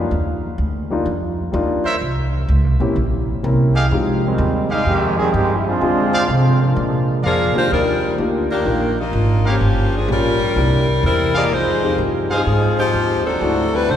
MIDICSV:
0, 0, Header, 1, 7, 480
1, 0, Start_track
1, 0, Key_signature, -3, "minor"
1, 0, Tempo, 475059
1, 112, Time_signature, 4, 2, 24, 8
1, 7787, Key_signature, -3, "major"
1, 14110, End_track
2, 0, Start_track
2, 0, Title_t, "Trumpet section"
2, 0, Program_c, 0, 61
2, 1870, Note_on_c, 0, 72, 79
2, 1872, Note_on_c, 0, 73, 76
2, 1872, Note_on_c, 0, 76, 91
2, 1873, Note_on_c, 0, 70, 83
2, 1978, Note_off_c, 0, 72, 0
2, 1979, Note_off_c, 0, 73, 0
2, 1980, Note_off_c, 0, 70, 0
2, 1980, Note_off_c, 0, 76, 0
2, 3790, Note_on_c, 0, 68, 76
2, 3790, Note_on_c, 0, 75, 73
2, 3791, Note_on_c, 0, 67, 84
2, 3792, Note_on_c, 0, 77, 94
2, 3898, Note_off_c, 0, 67, 0
2, 3898, Note_off_c, 0, 68, 0
2, 3898, Note_off_c, 0, 75, 0
2, 3899, Note_off_c, 0, 77, 0
2, 4749, Note_on_c, 0, 68, 83
2, 4749, Note_on_c, 0, 75, 83
2, 4750, Note_on_c, 0, 67, 93
2, 4750, Note_on_c, 0, 77, 105
2, 5356, Note_off_c, 0, 67, 0
2, 5356, Note_off_c, 0, 68, 0
2, 5356, Note_off_c, 0, 75, 0
2, 5357, Note_off_c, 0, 77, 0
2, 6184, Note_on_c, 0, 77, 97
2, 6187, Note_on_c, 0, 68, 90
2, 6187, Note_on_c, 0, 72, 81
2, 6187, Note_on_c, 0, 74, 85
2, 6293, Note_off_c, 0, 77, 0
2, 6295, Note_off_c, 0, 68, 0
2, 6295, Note_off_c, 0, 72, 0
2, 6295, Note_off_c, 0, 74, 0
2, 7303, Note_on_c, 0, 74, 76
2, 7303, Note_on_c, 0, 77, 93
2, 7305, Note_on_c, 0, 70, 77
2, 7785, Note_off_c, 0, 74, 0
2, 7785, Note_off_c, 0, 77, 0
2, 7786, Note_off_c, 0, 70, 0
2, 9547, Note_on_c, 0, 77, 88
2, 9549, Note_on_c, 0, 67, 78
2, 9549, Note_on_c, 0, 70, 71
2, 9549, Note_on_c, 0, 73, 74
2, 9655, Note_off_c, 0, 77, 0
2, 9656, Note_off_c, 0, 67, 0
2, 9656, Note_off_c, 0, 70, 0
2, 9656, Note_off_c, 0, 73, 0
2, 11460, Note_on_c, 0, 77, 89
2, 11463, Note_on_c, 0, 72, 68
2, 11464, Note_on_c, 0, 68, 80
2, 11464, Note_on_c, 0, 75, 73
2, 11571, Note_off_c, 0, 77, 0
2, 11573, Note_off_c, 0, 68, 0
2, 11573, Note_off_c, 0, 72, 0
2, 11573, Note_off_c, 0, 75, 0
2, 12431, Note_on_c, 0, 68, 88
2, 12431, Note_on_c, 0, 75, 78
2, 12432, Note_on_c, 0, 72, 77
2, 12432, Note_on_c, 0, 77, 95
2, 13039, Note_off_c, 0, 68, 0
2, 13039, Note_off_c, 0, 72, 0
2, 13039, Note_off_c, 0, 75, 0
2, 13039, Note_off_c, 0, 77, 0
2, 14110, End_track
3, 0, Start_track
3, 0, Title_t, "Grand piano"
3, 0, Program_c, 1, 0
3, 0, Note_on_c, 1, 63, 51
3, 0, Note_on_c, 1, 65, 63
3, 104, Note_off_c, 1, 63, 0
3, 106, Note_off_c, 1, 65, 0
3, 914, Note_on_c, 1, 55, 62
3, 914, Note_on_c, 1, 58, 55
3, 922, Note_on_c, 1, 62, 57
3, 926, Note_on_c, 1, 63, 58
3, 933, Note_on_c, 1, 65, 67
3, 1057, Note_off_c, 1, 55, 0
3, 1057, Note_off_c, 1, 58, 0
3, 1061, Note_off_c, 1, 62, 0
3, 1063, Note_off_c, 1, 63, 0
3, 1066, Note_off_c, 1, 65, 0
3, 1535, Note_on_c, 1, 55, 60
3, 1541, Note_on_c, 1, 58, 53
3, 1548, Note_on_c, 1, 62, 56
3, 1554, Note_on_c, 1, 63, 57
3, 1557, Note_on_c, 1, 65, 66
3, 1832, Note_off_c, 1, 55, 0
3, 1835, Note_off_c, 1, 58, 0
3, 1839, Note_off_c, 1, 62, 0
3, 1841, Note_off_c, 1, 63, 0
3, 1843, Note_off_c, 1, 65, 0
3, 2827, Note_on_c, 1, 58, 63
3, 2834, Note_on_c, 1, 60, 54
3, 2835, Note_on_c, 1, 61, 59
3, 2843, Note_on_c, 1, 64, 58
3, 2847, Note_on_c, 1, 67, 70
3, 2973, Note_off_c, 1, 58, 0
3, 2976, Note_off_c, 1, 60, 0
3, 2977, Note_off_c, 1, 61, 0
3, 2980, Note_off_c, 1, 64, 0
3, 2982, Note_off_c, 1, 67, 0
3, 3468, Note_on_c, 1, 58, 53
3, 3474, Note_on_c, 1, 60, 50
3, 3476, Note_on_c, 1, 61, 47
3, 3483, Note_on_c, 1, 64, 50
3, 3486, Note_on_c, 1, 70, 60
3, 3758, Note_off_c, 1, 58, 0
3, 3761, Note_off_c, 1, 60, 0
3, 3762, Note_off_c, 1, 61, 0
3, 3765, Note_off_c, 1, 64, 0
3, 3767, Note_off_c, 1, 70, 0
3, 3954, Note_on_c, 1, 56, 60
3, 3960, Note_on_c, 1, 60, 53
3, 3966, Note_on_c, 1, 63, 57
3, 3970, Note_on_c, 1, 65, 54
3, 3977, Note_on_c, 1, 67, 65
3, 4240, Note_off_c, 1, 56, 0
3, 4244, Note_off_c, 1, 60, 0
3, 4247, Note_off_c, 1, 63, 0
3, 4248, Note_off_c, 1, 65, 0
3, 4252, Note_off_c, 1, 67, 0
3, 5872, Note_on_c, 1, 56, 63
3, 5877, Note_on_c, 1, 60, 57
3, 5884, Note_on_c, 1, 65, 55
3, 5885, Note_on_c, 1, 62, 58
3, 5894, Note_on_c, 1, 68, 68
3, 6158, Note_off_c, 1, 56, 0
3, 6161, Note_off_c, 1, 60, 0
3, 6165, Note_off_c, 1, 62, 0
3, 6165, Note_off_c, 1, 65, 0
3, 6170, Note_off_c, 1, 68, 0
3, 7627, Note_on_c, 1, 58, 60
3, 7635, Note_on_c, 1, 74, 55
3, 7638, Note_on_c, 1, 51, 56
3, 7642, Note_on_c, 1, 65, 52
3, 7646, Note_on_c, 1, 67, 69
3, 8234, Note_off_c, 1, 58, 0
3, 8239, Note_off_c, 1, 74, 0
3, 8240, Note_off_c, 1, 51, 0
3, 8242, Note_off_c, 1, 65, 0
3, 8244, Note_off_c, 1, 67, 0
3, 8263, Note_on_c, 1, 58, 56
3, 8270, Note_on_c, 1, 62, 52
3, 8274, Note_on_c, 1, 63, 51
3, 8284, Note_on_c, 1, 65, 54
3, 8287, Note_on_c, 1, 67, 61
3, 8553, Note_off_c, 1, 58, 0
3, 8557, Note_off_c, 1, 62, 0
3, 8559, Note_off_c, 1, 63, 0
3, 8564, Note_off_c, 1, 65, 0
3, 8566, Note_off_c, 1, 67, 0
3, 8745, Note_on_c, 1, 58, 50
3, 8747, Note_on_c, 1, 62, 47
3, 8750, Note_on_c, 1, 63, 46
3, 8754, Note_on_c, 1, 65, 49
3, 8760, Note_on_c, 1, 70, 58
3, 9035, Note_off_c, 1, 58, 0
3, 9036, Note_off_c, 1, 62, 0
3, 9037, Note_off_c, 1, 63, 0
3, 9039, Note_off_c, 1, 65, 0
3, 9042, Note_off_c, 1, 70, 0
3, 10186, Note_on_c, 1, 55, 51
3, 10187, Note_on_c, 1, 58, 46
3, 10194, Note_on_c, 1, 61, 46
3, 10200, Note_on_c, 1, 65, 45
3, 10203, Note_on_c, 1, 67, 52
3, 10476, Note_off_c, 1, 55, 0
3, 10476, Note_off_c, 1, 58, 0
3, 10480, Note_off_c, 1, 61, 0
3, 10483, Note_off_c, 1, 65, 0
3, 10484, Note_off_c, 1, 67, 0
3, 10667, Note_on_c, 1, 58, 56
3, 10673, Note_on_c, 1, 60, 52
3, 10677, Note_on_c, 1, 62, 53
3, 10681, Note_on_c, 1, 64, 52
3, 10683, Note_on_c, 1, 67, 60
3, 10957, Note_off_c, 1, 58, 0
3, 10960, Note_off_c, 1, 60, 0
3, 10961, Note_off_c, 1, 62, 0
3, 10963, Note_off_c, 1, 64, 0
3, 10965, Note_off_c, 1, 67, 0
3, 11950, Note_on_c, 1, 68, 54
3, 11954, Note_on_c, 1, 60, 47
3, 11962, Note_on_c, 1, 63, 49
3, 11962, Note_on_c, 1, 65, 49
3, 11972, Note_on_c, 1, 67, 60
3, 12558, Note_off_c, 1, 68, 0
3, 12560, Note_off_c, 1, 60, 0
3, 12564, Note_off_c, 1, 63, 0
3, 12564, Note_off_c, 1, 65, 0
3, 12569, Note_off_c, 1, 67, 0
3, 13553, Note_on_c, 1, 57, 58
3, 13553, Note_on_c, 1, 60, 52
3, 13558, Note_on_c, 1, 62, 53
3, 13565, Note_on_c, 1, 64, 54
3, 13567, Note_on_c, 1, 66, 61
3, 14110, Note_off_c, 1, 57, 0
3, 14110, Note_off_c, 1, 60, 0
3, 14110, Note_off_c, 1, 62, 0
3, 14110, Note_off_c, 1, 64, 0
3, 14110, Note_off_c, 1, 66, 0
3, 14110, End_track
4, 0, Start_track
4, 0, Title_t, "Saxophone section"
4, 0, Program_c, 2, 65
4, 7330, Note_on_c, 2, 68, 82
4, 7331, Note_on_c, 2, 58, 74
4, 7335, Note_on_c, 2, 53, 80
4, 7336, Note_on_c, 2, 62, 74
4, 7618, Note_off_c, 2, 58, 0
4, 7618, Note_off_c, 2, 68, 0
4, 7620, Note_off_c, 2, 53, 0
4, 7621, Note_off_c, 2, 62, 0
4, 7650, Note_on_c, 2, 65, 85
4, 7651, Note_on_c, 2, 56, 83
4, 7655, Note_on_c, 2, 62, 77
4, 7656, Note_on_c, 2, 72, 98
4, 7788, Note_off_c, 2, 56, 0
4, 7788, Note_off_c, 2, 65, 0
4, 7790, Note_off_c, 2, 62, 0
4, 7791, Note_off_c, 2, 72, 0
4, 7800, Note_on_c, 2, 63, 65
4, 7804, Note_on_c, 2, 70, 77
4, 7806, Note_on_c, 2, 62, 68
4, 7808, Note_on_c, 2, 55, 66
4, 8240, Note_off_c, 2, 63, 0
4, 8242, Note_off_c, 2, 70, 0
4, 8243, Note_off_c, 2, 62, 0
4, 8245, Note_off_c, 2, 55, 0
4, 8603, Note_on_c, 2, 51, 65
4, 8606, Note_on_c, 2, 58, 68
4, 8608, Note_on_c, 2, 67, 73
4, 8609, Note_on_c, 2, 62, 67
4, 9043, Note_off_c, 2, 51, 0
4, 9044, Note_off_c, 2, 58, 0
4, 9045, Note_off_c, 2, 67, 0
4, 9046, Note_off_c, 2, 62, 0
4, 9091, Note_on_c, 2, 63, 66
4, 9094, Note_on_c, 2, 62, 65
4, 9099, Note_on_c, 2, 58, 64
4, 9099, Note_on_c, 2, 65, 74
4, 9560, Note_off_c, 2, 63, 0
4, 9561, Note_off_c, 2, 62, 0
4, 9563, Note_off_c, 2, 58, 0
4, 9564, Note_off_c, 2, 65, 0
4, 9592, Note_on_c, 2, 53, 68
4, 9598, Note_on_c, 2, 67, 78
4, 9599, Note_on_c, 2, 58, 66
4, 9599, Note_on_c, 2, 61, 70
4, 10047, Note_off_c, 2, 58, 0
4, 10050, Note_off_c, 2, 53, 0
4, 10053, Note_off_c, 2, 67, 0
4, 10054, Note_off_c, 2, 61, 0
4, 10059, Note_on_c, 2, 58, 68
4, 10061, Note_on_c, 2, 53, 70
4, 10062, Note_on_c, 2, 62, 65
4, 10062, Note_on_c, 2, 68, 76
4, 10203, Note_off_c, 2, 58, 0
4, 10204, Note_off_c, 2, 53, 0
4, 10204, Note_off_c, 2, 62, 0
4, 10204, Note_off_c, 2, 68, 0
4, 10217, Note_on_c, 2, 61, 74
4, 10221, Note_on_c, 2, 55, 76
4, 10222, Note_on_c, 2, 65, 68
4, 10223, Note_on_c, 2, 70, 85
4, 10650, Note_off_c, 2, 61, 0
4, 10653, Note_off_c, 2, 65, 0
4, 11125, Note_off_c, 2, 55, 0
4, 11126, Note_off_c, 2, 70, 0
4, 11169, Note_on_c, 2, 60, 83
4, 11173, Note_on_c, 2, 70, 97
4, 11174, Note_on_c, 2, 55, 75
4, 11175, Note_on_c, 2, 64, 82
4, 11458, Note_off_c, 2, 60, 0
4, 11460, Note_off_c, 2, 70, 0
4, 11461, Note_off_c, 2, 55, 0
4, 11461, Note_off_c, 2, 64, 0
4, 11488, Note_on_c, 2, 64, 77
4, 11490, Note_on_c, 2, 58, 75
4, 11491, Note_on_c, 2, 67, 77
4, 11494, Note_on_c, 2, 74, 89
4, 11628, Note_off_c, 2, 64, 0
4, 11629, Note_off_c, 2, 58, 0
4, 11629, Note_off_c, 2, 67, 0
4, 11631, Note_off_c, 2, 74, 0
4, 11647, Note_on_c, 2, 56, 75
4, 11652, Note_on_c, 2, 63, 75
4, 11654, Note_on_c, 2, 72, 91
4, 11657, Note_on_c, 2, 65, 74
4, 12119, Note_off_c, 2, 56, 0
4, 12121, Note_off_c, 2, 63, 0
4, 12122, Note_off_c, 2, 72, 0
4, 12123, Note_off_c, 2, 65, 0
4, 12447, Note_on_c, 2, 53, 70
4, 12448, Note_on_c, 2, 63, 68
4, 12450, Note_on_c, 2, 60, 71
4, 12450, Note_on_c, 2, 68, 83
4, 12886, Note_off_c, 2, 53, 0
4, 12887, Note_off_c, 2, 63, 0
4, 12888, Note_off_c, 2, 60, 0
4, 12888, Note_off_c, 2, 68, 0
4, 12917, Note_on_c, 2, 67, 80
4, 12924, Note_on_c, 2, 63, 69
4, 12926, Note_on_c, 2, 53, 71
4, 12926, Note_on_c, 2, 60, 67
4, 13361, Note_off_c, 2, 67, 0
4, 13365, Note_off_c, 2, 63, 0
4, 13366, Note_off_c, 2, 53, 0
4, 13366, Note_off_c, 2, 60, 0
4, 13402, Note_on_c, 2, 62, 78
4, 13403, Note_on_c, 2, 69, 82
4, 13404, Note_on_c, 2, 60, 77
4, 13406, Note_on_c, 2, 54, 75
4, 13876, Note_off_c, 2, 60, 0
4, 13878, Note_off_c, 2, 62, 0
4, 13878, Note_off_c, 2, 69, 0
4, 13880, Note_off_c, 2, 54, 0
4, 13882, Note_on_c, 2, 55, 74
4, 13884, Note_on_c, 2, 71, 86
4, 13887, Note_on_c, 2, 64, 71
4, 13888, Note_on_c, 2, 60, 72
4, 14031, Note_on_c, 2, 57, 76
4, 14035, Note_on_c, 2, 62, 70
4, 14035, Note_on_c, 2, 66, 73
4, 14037, Note_off_c, 2, 55, 0
4, 14038, Note_off_c, 2, 71, 0
4, 14039, Note_off_c, 2, 64, 0
4, 14040, Note_off_c, 2, 60, 0
4, 14041, Note_on_c, 2, 72, 85
4, 14110, Note_off_c, 2, 57, 0
4, 14110, Note_off_c, 2, 62, 0
4, 14110, Note_off_c, 2, 66, 0
4, 14110, Note_off_c, 2, 72, 0
4, 14110, End_track
5, 0, Start_track
5, 0, Title_t, "Trombone section"
5, 0, Program_c, 3, 61
5, 4282, Note_on_c, 3, 51, 81
5, 4285, Note_on_c, 3, 60, 89
5, 4286, Note_on_c, 3, 56, 79
5, 4288, Note_on_c, 3, 55, 78
5, 4722, Note_off_c, 3, 51, 0
5, 4724, Note_off_c, 3, 60, 0
5, 4725, Note_off_c, 3, 56, 0
5, 4726, Note_off_c, 3, 55, 0
5, 4756, Note_on_c, 3, 55, 77
5, 4758, Note_on_c, 3, 63, 84
5, 4761, Note_on_c, 3, 56, 80
5, 4762, Note_on_c, 3, 60, 75
5, 4895, Note_off_c, 3, 56, 0
5, 4896, Note_off_c, 3, 60, 0
5, 4901, Note_off_c, 3, 55, 0
5, 4902, Note_off_c, 3, 63, 0
5, 4907, Note_on_c, 3, 56, 91
5, 4908, Note_on_c, 3, 60, 88
5, 4910, Note_on_c, 3, 51, 89
5, 4910, Note_on_c, 3, 67, 102
5, 5213, Note_off_c, 3, 51, 0
5, 5218, Note_off_c, 3, 60, 0
5, 5223, Note_on_c, 3, 68, 107
5, 5225, Note_on_c, 3, 51, 91
5, 5229, Note_off_c, 3, 56, 0
5, 5230, Note_off_c, 3, 67, 0
5, 5230, Note_on_c, 3, 55, 90
5, 5230, Note_on_c, 3, 60, 86
5, 5374, Note_off_c, 3, 68, 0
5, 5375, Note_off_c, 3, 51, 0
5, 5375, Note_off_c, 3, 60, 0
5, 5378, Note_off_c, 3, 55, 0
5, 5382, Note_on_c, 3, 67, 102
5, 5384, Note_on_c, 3, 56, 88
5, 5387, Note_on_c, 3, 60, 90
5, 5391, Note_on_c, 3, 51, 88
5, 5611, Note_off_c, 3, 67, 0
5, 5612, Note_off_c, 3, 56, 0
5, 5613, Note_off_c, 3, 60, 0
5, 5615, Note_off_c, 3, 51, 0
5, 5616, Note_on_c, 3, 64, 67
5, 5710, Note_off_c, 3, 64, 0
5, 5713, Note_on_c, 3, 65, 112
5, 5715, Note_on_c, 3, 56, 95
5, 5715, Note_on_c, 3, 60, 89
5, 5717, Note_on_c, 3, 62, 93
5, 6341, Note_off_c, 3, 56, 0
5, 6343, Note_off_c, 3, 60, 0
5, 6350, Note_off_c, 3, 65, 0
5, 6351, Note_off_c, 3, 62, 0
5, 6353, Note_on_c, 3, 53, 77
5, 6354, Note_on_c, 3, 56, 78
5, 6355, Note_on_c, 3, 50, 74
5, 6355, Note_on_c, 3, 60, 78
5, 6664, Note_off_c, 3, 53, 0
5, 6664, Note_off_c, 3, 56, 0
5, 6672, Note_off_c, 3, 50, 0
5, 6672, Note_off_c, 3, 60, 0
5, 6674, Note_on_c, 3, 62, 84
5, 6676, Note_on_c, 3, 53, 65
5, 6676, Note_on_c, 3, 56, 67
5, 6679, Note_on_c, 3, 58, 68
5, 7310, Note_off_c, 3, 62, 0
5, 7311, Note_off_c, 3, 53, 0
5, 7311, Note_off_c, 3, 56, 0
5, 7312, Note_off_c, 3, 58, 0
5, 14110, End_track
6, 0, Start_track
6, 0, Title_t, "Upright bass"
6, 0, Program_c, 4, 32
6, 111, Note_on_c, 4, 39, 78
6, 577, Note_off_c, 4, 39, 0
6, 586, Note_on_c, 4, 38, 85
6, 1055, Note_off_c, 4, 38, 0
6, 1066, Note_on_c, 4, 41, 81
6, 1534, Note_off_c, 4, 41, 0
6, 1551, Note_on_c, 4, 39, 92
6, 2017, Note_off_c, 4, 39, 0
6, 2035, Note_on_c, 4, 36, 74
6, 2499, Note_off_c, 4, 36, 0
6, 2510, Note_on_c, 4, 37, 89
6, 2670, Note_off_c, 4, 37, 0
6, 2670, Note_on_c, 4, 36, 54
6, 2825, Note_off_c, 4, 36, 0
6, 2831, Note_on_c, 4, 34, 72
6, 2980, Note_off_c, 4, 34, 0
6, 2988, Note_on_c, 4, 34, 79
6, 3455, Note_off_c, 4, 34, 0
6, 3476, Note_on_c, 4, 36, 89
6, 3938, Note_off_c, 4, 36, 0
6, 3951, Note_on_c, 4, 41, 86
6, 4416, Note_off_c, 4, 41, 0
6, 4429, Note_on_c, 4, 39, 92
6, 4894, Note_off_c, 4, 39, 0
6, 4909, Note_on_c, 4, 41, 84
6, 5374, Note_off_c, 4, 41, 0
6, 5392, Note_on_c, 4, 43, 89
6, 5855, Note_off_c, 4, 43, 0
6, 5873, Note_on_c, 4, 50, 83
6, 6336, Note_off_c, 4, 50, 0
6, 6352, Note_on_c, 4, 48, 88
6, 6815, Note_off_c, 4, 48, 0
6, 6834, Note_on_c, 4, 46, 86
6, 7296, Note_off_c, 4, 46, 0
6, 7310, Note_on_c, 4, 41, 93
6, 7607, Note_off_c, 4, 41, 0
6, 7796, Note_on_c, 4, 39, 75
6, 8257, Note_off_c, 4, 39, 0
6, 8268, Note_on_c, 4, 38, 80
6, 8733, Note_off_c, 4, 38, 0
6, 8745, Note_on_c, 4, 34, 75
6, 9212, Note_off_c, 4, 34, 0
6, 9223, Note_on_c, 4, 32, 91
6, 9691, Note_off_c, 4, 32, 0
6, 9705, Note_on_c, 4, 31, 78
6, 10172, Note_off_c, 4, 31, 0
6, 10187, Note_on_c, 4, 34, 86
6, 10653, Note_off_c, 4, 34, 0
6, 10667, Note_on_c, 4, 36, 74
6, 11133, Note_off_c, 4, 36, 0
6, 11145, Note_on_c, 4, 40, 90
6, 11613, Note_off_c, 4, 40, 0
6, 11627, Note_on_c, 4, 41, 79
6, 12094, Note_off_c, 4, 41, 0
6, 12107, Note_on_c, 4, 43, 85
6, 12574, Note_off_c, 4, 43, 0
6, 12595, Note_on_c, 4, 44, 77
6, 13059, Note_off_c, 4, 44, 0
6, 13071, Note_on_c, 4, 39, 86
6, 13537, Note_off_c, 4, 39, 0
6, 13551, Note_on_c, 4, 38, 77
6, 14017, Note_off_c, 4, 38, 0
6, 14030, Note_on_c, 4, 36, 88
6, 14110, Note_off_c, 4, 36, 0
6, 14110, End_track
7, 0, Start_track
7, 0, Title_t, "Muted upright bass strokes"
7, 7640, Note_on_c, 9, 29, 37
7, 7741, Note_off_c, 9, 29, 0
7, 14110, End_track
0, 0, End_of_file